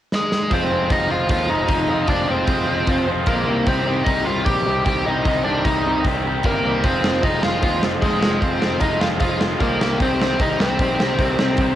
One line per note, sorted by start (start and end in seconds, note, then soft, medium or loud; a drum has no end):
0.12 0.49 G#3 medium
0.12 0.54 G#4 medium
0.12 snare medium
0.32 snare medium
0.51 0.85 F1 medium
0.51 0.70 F3 medium
0.51 0.70 G#3 medium
0.51 0.88 C4 medium
0.51 0.71 C4 medium
0.51 0.70 F4 loud
0.51 0.93 C5 medium
0.51 kick loud
0.51 open hi-hat medium
0.71 0.89 F3 medium
0.71 0.90 G#3 medium
0.71 0.90 C4 medium
0.71 0.90 F4 medium
0.90 1.08 F1 medium
0.90 1.07 F3 medium
0.90 1.07 G#3 loud
0.90 1.09 C4 loud
0.90 1.09 D#4 medium
0.90 1.09 F4 medium
0.90 1.11 D#5 medium
0.90 kick loud
0.90 open hi-hat medium
1.09 1.27 F1 medium
1.09 1.27 F3 medium
1.09 1.27 G#3 medium
1.09 1.28 C4 medium
1.09 1.27 F4 medium
1.09 1.29 F4 medium
1.09 1.29 F5 medium
1.28 1.47 D#2 medium
1.28 1.48 F3 medium
1.28 1.48 G#3 medium
1.28 1.49 C4 medium
1.28 1.49 F4 loud
1.28 1.49 F4 medium
1.28 1.49 F5 medium
1.28 kick loud
1.28 open hi-hat medium
1.49 1.68 F1 medium
1.49 1.68 F3 medium
1.49 1.68 G#3 medium
1.49 1.69 C4 medium
1.49 2.05 D#4 medium
1.49 1.69 F4 medium
1.49 2.11 D#5 medium
1.68 1.86 F1 medium
1.68 1.87 F3 medium
1.68 1.88 G#3 medium
1.68 1.89 C4 medium
1.68 1.89 F4 medium
1.68 kick loud
1.68 open hi-hat medium
1.88 2.06 F1 medium
1.88 2.07 F3 medium
1.88 2.08 G#3 medium
1.88 2.08 C4 medium
1.88 2.08 F4 medium
2.08 2.26 F1 medium
2.08 2.26 F3 medium
2.08 2.27 G#3 medium
2.08 2.28 C4 loud
2.08 2.27 D4 medium
2.08 2.27 F4 loud
2.08 2.31 D5 loud
2.08 kick loud
2.08 open hi-hat medium
2.27 2.46 F1 medium
2.27 2.46 F3 medium
2.27 2.47 G#3 medium
2.27 2.48 C4 medium
2.27 3.05 C4 medium
2.27 2.47 F4 medium
2.27 3.09 C5 medium
2.47 2.65 F1 medium
2.47 2.66 F3 medium
2.47 2.66 G#3 medium
2.47 2.67 C4 medium
2.47 2.67 F4 loud
2.47 kick loud
2.47 open hi-hat medium
2.67 2.86 F1 medium
2.67 2.86 F3 medium
2.67 2.87 G#3 medium
2.67 2.88 C4 medium
2.67 2.88 F4 medium
2.87 3.22 F1 medium
2.87 3.06 F3 medium
2.87 3.06 G#3 loud
2.87 3.08 C4 loud
2.87 3.07 F4 medium
2.87 kick loud
2.87 open hi-hat soft
3.08 3.27 F3 medium
3.08 3.27 G#3 medium
3.08 3.28 C4 medium
3.08 3.27 F4 medium
3.26 3.44 A#1 medium
3.26 3.46 F3 loud
3.26 3.47 G#3 loud
3.26 3.65 A#3 medium
3.26 3.48 C4 loud
3.26 3.47 F4 loud
3.26 3.67 A#4 medium
3.26 kick loud
3.26 open hi-hat medium
3.48 3.65 C2 medium
3.48 3.68 C3 medium
3.48 3.67 D#3 medium
3.48 3.68 G3 loud
3.48 3.69 C4 loud
3.48 3.69 G4 loud
3.66 4.01 C2 medium
3.66 3.86 C3 medium
3.66 3.86 D#3 medium
3.66 3.87 G3 loud
3.66 4.04 C4 medium
3.66 3.87 C4 loud
3.66 3.87 G4 loud
3.66 4.08 C5 medium
3.66 kick loud
3.66 open hi-hat soft
3.86 4.06 C3 medium
3.86 4.05 D#3 medium
3.86 4.06 G3 medium
3.86 4.06 C4 medium
3.86 4.07 G4 medium
4.04 4.24 C2 medium
4.04 4.26 C3 medium
4.04 4.26 D#3 medium
4.04 4.26 G3 loud
4.04 4.27 C4 loud
4.04 4.24 D#4 medium
4.04 4.27 G4 medium
4.04 4.25 D#5 loud
4.04 kick loud
4.04 open hi-hat medium
4.25 4.44 C2 medium
4.25 4.44 C3 medium
4.25 4.44 D#3 medium
4.25 4.44 G3 medium
4.25 4.46 C4 medium
4.25 4.44 F4 medium
4.25 4.45 G4 medium
4.25 4.45 F5 medium
4.45 4.64 A#1 medium
4.45 4.65 C3 loud
4.45 4.66 D#3 loud
4.45 4.66 G3 medium
4.45 4.67 C4 loud
4.45 4.83 G4 medium
4.45 4.66 G4 loud
4.45 4.84 G5 loud
4.45 kick loud
4.45 open hi-hat medium
4.67 4.84 C2 medium
4.67 4.85 C3 medium
4.67 4.86 D#3 medium
4.67 4.86 G3 medium
4.67 4.87 C4 medium
4.67 4.87 G4 medium
4.85 5.03 C2 medium
4.85 5.06 C3 medium
4.85 5.06 D#3 medium
4.85 5.06 G3 medium
4.85 5.07 C4 loud
4.85 5.04 G4 medium
4.85 5.07 G4 loud
4.85 5.04 G5 medium
4.85 kick loud
4.85 open hi-hat medium
5.06 5.24 C2 medium
5.06 5.26 C3 medium
5.06 5.26 D#3 medium
5.06 5.26 G3 medium
5.06 5.27 C4 medium
5.06 5.43 D#4 medium
5.06 5.27 G4 medium
5.06 5.44 D#5 loud
5.25 5.43 C2 medium
5.25 5.46 C3 medium
5.25 5.46 D#3 medium
5.25 5.47 G3 loud
5.25 5.47 C4 medium
5.25 5.47 G4 loud
5.25 kick loud
5.25 open hi-hat medium
5.44 5.63 C2 medium
5.44 5.65 C3 medium
5.44 5.65 D#3 medium
5.44 5.66 G3 medium
5.44 5.67 C4 medium
5.44 5.63 D4 medium
5.44 5.66 G4 medium
5.44 5.64 D5 medium
5.64 5.82 C2 medium
5.64 5.86 C3 medium
5.64 5.86 D#3 loud
5.64 5.86 G3 loud
5.64 5.88 C4 medium
5.64 6.02 D#4 medium
5.64 5.87 G4 medium
5.64 6.04 D#5 medium
5.64 kick loud
5.64 open hi-hat medium
5.85 6.02 C2 medium
5.85 6.05 C3 medium
5.85 6.05 D#3 medium
5.85 6.05 G3 medium
5.85 6.07 C4 medium
5.85 6.06 G4 medium
6.05 6.39 C2 medium
6.05 6.24 C3 medium
6.05 6.25 D#3 medium
6.05 6.25 G3 medium
6.05 6.27 C4 loud
6.05 6.26 G4 loud
6.05 kick loud
6.05 open hi-hat medium
6.25 6.45 C3 medium
6.25 6.45 D#3 medium
6.25 6.45 G3 medium
6.25 6.46 C4 medium
6.25 6.46 G4 loud
6.43 6.61 G1 medium
6.43 6.64 C3 medium
6.43 6.65 D#3 medium
6.43 6.65 G3 medium
6.43 6.82 A#3 medium
6.43 6.66 C4 medium
6.43 6.65 G4 loud
6.43 6.86 A#4 medium
6.43 kick loud
6.43 open hi-hat medium
6.64 6.81 C2 medium
6.64 6.83 C3 medium
6.64 6.84 D#3 medium
6.64 6.84 G3 medium
6.64 6.85 C4 medium
6.64 6.84 G4 medium
6.83 7.18 F1 medium
6.83 7.04 F3 medium
6.83 7.04 G#3 medium
6.83 7.20 C4 medium
6.83 7.05 C4 loud
6.83 7.05 F4 medium
6.83 7.25 C5 loud
6.83 kick loud
6.83 open hi-hat soft
7.04 7.23 F3 medium
7.04 7.22 G#3 medium
7.04 7.23 C4 medium
7.04 7.24 F4 medium
7.04 snare loud
7.23 7.41 F1 medium
7.23 7.43 F3 medium
7.23 7.43 G#3 loud
7.23 7.45 C4 medium
7.23 7.42 D#4 medium
7.23 7.44 F4 medium
7.23 7.43 D#5 medium
7.23 kick loud
7.23 open hi-hat medium
7.43 7.61 F1 medium
7.43 7.61 F3 medium
7.43 7.61 G#3 medium
7.43 7.63 C4 medium
7.43 7.61 F4 medium
7.43 7.62 F4 medium
7.43 7.62 F5 medium
7.43 snare loud
7.62 7.80 D#2 medium
7.62 7.82 F3 loud
7.62 7.83 G#3 medium
7.62 7.83 C4 medium
7.62 7.81 F4 medium
7.62 7.83 F4 loud
7.62 7.82 F5 loud
7.62 kick loud
7.62 open hi-hat medium
7.82 7.99 F1 medium
7.82 8.00 F3 medium
7.82 8.01 G#3 medium
7.82 8.02 C4 medium
7.82 8.01 F4 medium
7.82 snare loud
8.01 8.19 F1 medium
8.01 8.20 F3 medium
8.01 8.39 G#3 medium
8.01 8.21 G#3 medium
8.01 8.21 C4 medium
8.01 8.21 F4 loud
8.01 8.43 G#4 medium
8.01 kick loud
8.01 open hi-hat medium
8.21 8.39 F1 medium
8.21 8.40 F3 medium
8.21 8.41 G#3 medium
8.21 8.41 C4 medium
8.21 8.41 F4 medium
8.21 snare loud
8.40 8.59 F1 medium
8.40 8.61 F3 medium
8.40 8.62 G#3 medium
8.40 8.78 C4 medium
8.40 8.62 C4 loud
8.40 8.61 F4 loud
8.40 8.78 C5 medium
8.40 kick loud
8.40 open hi-hat medium
8.62 8.79 F1 medium
8.62 8.80 F3 medium
8.62 8.81 G#3 medium
8.62 8.82 C4 medium
8.62 8.81 F4 medium
8.62 snare loud
8.80 8.99 F1 medium
8.80 8.99 F3 medium
8.80 9.00 G#3 medium
8.80 9.00 C4 medium
8.80 8.99 D#4 medium
8.80 9.00 F4 loud
8.80 9.00 D#5 loud
8.80 kick loud
8.80 open hi-hat medium
9.00 9.19 F1 medium
9.00 9.20 F3 medium
9.00 9.20 G#3 medium
9.00 9.22 C4 medium
9.00 9.06 F4 medium
9.00 9.21 F4 medium
9.00 9.06 F5 medium
9.00 snare loud
9.20 9.55 F1 medium
9.20 9.40 F3 medium
9.20 9.41 G#3 loud
9.20 9.42 C4 loud
9.20 9.40 F4 medium
9.20 9.42 F4 loud
9.20 9.39 F5 medium
9.20 kick loud
9.20 open hi-hat medium
9.41 9.61 F3 medium
9.41 9.61 G#3 medium
9.41 9.61 C4 medium
9.41 9.61 F4 medium
9.41 snare loud
9.61 9.78 C2 medium
9.61 9.80 F3 medium
9.61 9.80 G#3 medium
9.61 9.98 A#3 medium
9.61 9.82 C4 medium
9.61 9.80 F4 loud
9.61 9.98 A#4 medium
9.61 kick loud
9.61 open hi-hat soft
9.79 9.97 C2 medium
9.79 10.01 C3 medium
9.79 9.99 D#3 loud
9.79 10.01 G3 medium
9.79 10.01 C4 medium
9.79 10.02 G4 loud
9.79 snare loud
10.00 10.35 C2 medium
10.00 10.20 C3 medium
10.00 10.20 D#3 loud
10.00 10.21 G3 loud
10.00 10.21 C4 loud
10.00 10.38 C4 medium
10.00 10.21 G4 medium
10.00 10.42 C5 loud
10.00 kick loud
10.00 open hi-hat medium
10.21 10.41 C3 medium
10.21 10.40 D#3 medium
10.21 10.42 G3 medium
10.21 10.41 C4 medium
10.21 10.42 G4 loud
10.21 snare loud
10.39 10.57 C2 medium
10.39 10.61 C3 medium
10.39 10.61 D#3 medium
10.39 10.62 G3 medium
10.39 10.62 C4 medium
10.39 10.59 D#4 medium
10.39 10.62 G4 loud
10.39 10.59 D#5 loud
10.39 kick loud
10.39 open hi-hat medium
10.59 10.77 C2 medium
10.59 10.80 C3 medium
10.59 10.81 D#3 medium
10.59 10.81 G3 medium
10.59 11.75 C4 medium
10.59 10.82 C4 medium
10.59 10.80 G4 medium
10.59 11.75 C5 medium
10.59 snare loud
10.79 10.97 A#1 medium
10.79 11.00 C3 loud
10.79 11.01 D#3 medium
10.79 11.00 G3 loud
10.79 11.02 C4 medium
10.79 11.01 G4 loud
10.79 kick loud
10.79 open hi-hat medium
10.99 11.16 C2 medium
10.99 11.20 C3 medium
10.99 11.20 D#3 medium
10.99 11.20 G3 medium
10.99 11.21 C4 medium
10.99 snare loud
11.03 11.21 G4 medium
11.19 11.36 C2 loud
11.19 11.39 C3 medium
11.19 11.39 D#3 medium
11.19 11.40 G3 medium
11.19 11.41 C4 medium
11.19 11.41 G4 loud
11.19 kick loud
11.19 open hi-hat medium
11.38 11.56 C2 medium
11.38 11.60 C3 medium
11.38 11.60 D#3 medium
11.38 11.60 G3 medium
11.38 11.60 C4 medium
11.38 11.60 G4 medium
11.38 snare loud
11.57 11.75 C2 medium
11.57 kick loud
11.57 open hi-hat medium
11.61 11.75 C3 medium
11.61 11.75 D#3 medium
11.61 11.75 G3 medium
11.61 11.75 C4 loud
11.61 11.75 G4 loud